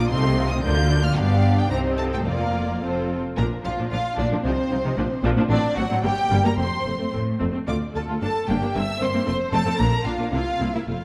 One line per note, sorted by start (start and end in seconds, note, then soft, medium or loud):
0.00 0.10 F4 medium
0.00 0.10 D5 medium
0.00 0.10 D6 loud
0.09 0.57 C2 loud
0.09 0.57 C3 loud
0.09 0.22 C4 medium
0.09 0.22 D#4 medium
0.09 0.23 A4 medium
0.09 0.23 F5 medium
0.09 0.48 C6 loud
0.23 0.36 A3 medium
0.23 0.35 C4 medium
0.23 0.36 F4 medium
0.23 0.37 D#5 medium
0.36 0.49 C4 medium
0.36 0.50 D#4 medium
0.36 0.50 A4 medium
0.36 0.50 F5 medium
0.49 0.63 A3 medium
0.49 0.63 C4 medium
0.49 0.63 F4 medium
0.49 0.63 D#5 medium
0.49 0.63 D#6 loud
0.62 1.10 D2 loud
0.62 1.10 D3 loud
0.62 0.75 F3 medium
0.62 0.75 D4 medium
0.62 0.76 A#4 medium
0.62 0.75 D5 medium
0.62 1.02 G6 loud
0.77 0.90 A#3 medium
0.77 0.90 F4 medium
0.77 0.90 F5 medium
0.89 1.03 F3 medium
0.89 1.03 D4 medium
0.89 1.03 A#4 medium
0.89 1.03 D5 medium
1.02 1.16 A#3 medium
1.02 1.16 F4 medium
1.02 1.16 F5 medium
1.02 1.17 F6 loud
1.15 1.67 G1 loud
1.15 1.67 G2 medium
1.15 1.66 B3 medium
1.15 1.66 D4 medium
1.15 1.66 G4 medium
1.15 1.66 D5 medium
1.15 1.57 F5 loud
1.58 1.71 G5 loud
1.70 2.26 C2 medium
1.70 2.25 C3 medium
1.70 2.26 C4 medium
1.70 2.26 D#4 medium
1.70 1.78 G4 medium
1.70 2.26 C5 medium
1.70 1.78 A#5 loud
1.96 2.25 A4 medium
1.96 2.04 A5 loud
2.13 2.19 G5 medium
2.24 2.83 F1 medium
2.24 2.81 F2 medium
2.24 2.83 A#3 medium
2.24 2.82 F4 medium
2.24 2.82 A#4 medium
2.24 2.82 D5 medium
2.24 2.82 F5 medium
2.81 3.18 F1 medium
2.81 3.17 F2 medium
2.81 3.18 C4 medium
2.81 3.18 F4 medium
2.81 3.16 A4 medium
2.81 3.16 C5 medium
3.37 3.44 A#1 medium
3.37 3.44 A#2 medium
3.37 3.44 F3 medium
3.37 3.44 D4 medium
3.37 3.45 A#4 loud
3.37 3.46 A#5 medium
3.65 3.71 A#1 medium
3.65 3.71 A#2 medium
3.65 3.71 F3 medium
3.65 3.71 D4 medium
3.65 3.90 F4 medium
3.65 3.73 F5 loud
3.79 3.84 A#2 medium
3.79 3.85 F3 medium
3.79 3.84 D4 medium
3.91 3.98 A#1 medium
3.91 3.98 A#2 medium
3.91 3.97 F3 medium
3.91 3.97 D4 medium
3.91 4.17 F4 loud
3.91 4.18 F5 loud
4.17 4.24 A#1 loud
4.17 4.24 A#2 medium
4.17 4.23 F3 medium
4.17 4.23 D4 medium
4.17 4.44 D4 medium
4.17 4.27 D5 loud
4.32 4.38 A#2 medium
4.32 4.37 F3 medium
4.32 4.37 D4 medium
4.43 4.50 C2 medium
4.43 4.51 C3 loud
4.43 4.50 F3 medium
4.43 5.21 C4 medium
4.43 4.50 D#4 loud
4.43 5.22 C5 loud
4.71 4.76 C2 medium
4.71 4.77 C3 medium
4.71 4.76 F3 medium
4.71 4.77 D#4 medium
4.84 4.90 C3 loud
4.84 4.89 F3 loud
4.84 4.89 D#4 medium
4.98 5.03 A#1 medium
4.98 5.03 A#2 medium
4.98 5.04 F3 medium
4.98 5.04 D4 medium
5.24 5.29 A#1 loud
5.24 5.29 A#2 loud
5.24 5.30 F3 loud
5.24 5.30 D4 loud
5.37 5.42 A#2 medium
5.37 5.43 F3 medium
5.37 5.43 D4 medium
5.49 5.55 A1 loud
5.49 5.55 A2 loud
5.49 5.56 F#3 loud
5.49 5.56 C4 loud
5.49 5.74 D4 loud
5.49 5.75 D5 loud
5.76 5.83 A1 medium
5.76 5.82 A2 medium
5.76 5.83 F#3 medium
5.76 5.83 C4 medium
5.76 5.84 F#4 loud
5.76 6.04 F#5 loud
5.90 5.95 A2 loud
5.90 5.95 F#3 loud
5.90 5.95 C4 loud
6.03 6.09 G1 medium
6.03 6.09 G2 medium
6.03 6.09 G3 medium
6.03 6.09 A#3 medium
6.03 6.43 G4 loud
6.03 6.44 G5 loud
6.30 6.36 G1 loud
6.30 6.36 G2 medium
6.30 6.36 G3 loud
6.30 6.37 A#3 loud
6.44 6.50 G2 medium
6.44 6.50 G3 medium
6.44 6.50 A#3 medium
6.44 6.50 A#4 medium
6.44 6.59 A#5 loud
6.58 6.63 F1 medium
6.58 6.65 F2 medium
6.58 6.63 A3 medium
6.58 6.64 C4 medium
6.58 7.12 C5 medium
6.58 7.12 C6 medium
6.86 6.91 F1 medium
6.86 6.92 F2 medium
6.86 6.92 A3 medium
6.86 6.92 C4 medium
6.98 7.06 F2 medium
6.98 7.04 A3 medium
6.98 7.04 C4 medium
7.13 7.19 F1 medium
7.13 7.38 A2 medium
7.13 7.19 A3 medium
7.13 7.19 C4 medium
7.40 7.47 F1 medium
7.40 7.49 F2 medium
7.40 7.45 A3 medium
7.40 7.46 C4 medium
7.53 7.59 A3 medium
7.53 7.59 C4 medium
7.68 7.73 D2 medium
7.68 7.74 D2 medium
7.68 7.73 A3 medium
7.68 7.73 F4 medium
7.68 7.76 D5 medium
7.68 7.76 D6 medium
7.94 8.00 D2 medium
7.94 8.01 D2 medium
7.94 8.00 A3 medium
7.94 8.01 F4 medium
7.94 8.21 A4 medium
7.94 8.04 A5 medium
8.08 8.13 D2 loud
8.08 8.14 A3 medium
8.08 8.13 F4 medium
8.21 8.28 G1 medium
8.21 8.26 G2 medium
8.21 8.27 A#3 medium
8.21 8.27 D4 medium
8.21 8.48 A4 medium
8.21 8.48 A5 loud
8.48 8.55 G1 loud
8.48 8.54 G2 medium
8.48 8.54 A#3 medium
8.48 8.55 D4 medium
8.48 8.75 G4 medium
8.48 8.75 G5 medium
8.62 8.67 G2 medium
8.62 8.67 A#3 medium
8.62 8.68 D4 medium
8.75 8.81 G1 medium
8.75 8.80 G2 loud
8.75 8.80 A#3 medium
8.75 8.81 C4 medium
8.75 9.02 E5 medium
8.75 9.02 E6 loud
9.00 9.07 G1 medium
9.00 9.06 G2 medium
9.00 9.06 A#3 medium
9.00 9.06 C4 medium
9.00 9.26 C5 medium
9.00 9.26 C6 loud
9.13 9.19 G2 loud
9.13 9.19 A#3 loud
9.13 9.19 C4 medium
9.26 9.34 F1 medium
9.26 9.32 F2 medium
9.26 9.32 A3 medium
9.26 9.31 C4 medium
9.26 9.53 C5 loud
9.26 9.35 C6 loud
9.52 9.59 F1 loud
9.52 9.58 F2 loud
9.52 9.58 A3 loud
9.52 9.58 C4 loud
9.52 9.79 A4 loud
9.52 9.79 A5 loud
9.65 9.70 F2 medium
9.65 9.71 A3 medium
9.65 9.71 C4 medium
9.77 9.85 A#1 loud
9.77 9.84 A#2 medium
9.77 9.85 A#3 medium
9.77 9.85 D4 medium
9.77 10.05 A#4 loud
9.77 10.06 A#5 loud
10.03 10.11 A#1 medium
10.03 10.10 A#2 medium
10.03 10.11 A#3 medium
10.03 10.11 D4 medium
10.03 10.30 F4 medium
10.03 10.32 F5 medium
10.18 10.24 A#2 medium
10.18 10.25 A#3 medium
10.18 10.25 D4 medium
10.32 10.38 C2 medium
10.32 10.38 C3 medium
10.32 10.39 A#3 medium
10.32 10.39 E4 medium
10.32 10.73 F4 loud
10.32 10.73 F5 loud
10.60 10.66 C2 medium
10.60 10.65 C3 medium
10.60 10.67 A#3 medium
10.60 10.67 E4 medium
10.74 10.79 C3 medium
10.74 10.81 A#3 medium
10.74 10.80 E4 medium
10.74 10.81 E4 medium
10.74 10.89 E5 medium
10.87 10.94 F1 medium
10.87 10.94 F2 medium
10.87 10.93 A3 medium
10.87 10.93 F4 medium
10.87 11.04 F4 medium
10.87 11.04 F5 medium